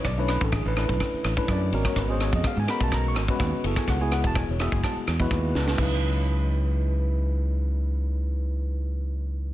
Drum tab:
CC |----------------|----------------|----------------|x---------------|
RD |x-xxx-xxx-xxx-xx|x-xxx-xxx-xxx-xx|x-xxx-xxx-xxx---|----------------|
SD |r-r-r-r-r-r-r--r|r-r-r-r-r-r-r--r|r-r-r-r-r-r-r-oo|----------------|
BD |o--oo--oo--oo--o|o--oo--oo--oo--o|o--oo--oo--oo---|o---------------|

CC |----------------|
RD |----------------|
SD |----------------|
BD |----------------|